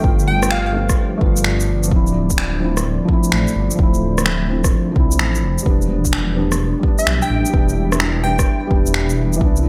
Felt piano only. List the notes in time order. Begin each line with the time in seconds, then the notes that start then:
Already playing: B3 F4
0.00 A3 B3
0.08 F4
0.73 A3 B3 F4
1.18 A3
1.22 B3 F4
1.88 F3
1.92 C4 E4
2.60 F3 C4 E4
3.05 F3 C4
3.13 E4
3.75 F3 C4
3.83 E4
4.47 F3 C4 E4
4.92 F3 C4
5.00 E4
5.62 G3 B3
5.70 D4
6.34 G3 B3
6.38 D4
6.80 G3 B3
6.88 D4
7.50 G3 B3
7.58 D4
8.22 G3 B3 D4
8.67 G3
8.71 B3 D4
9.36 E3
9.41 B3
9.45 D4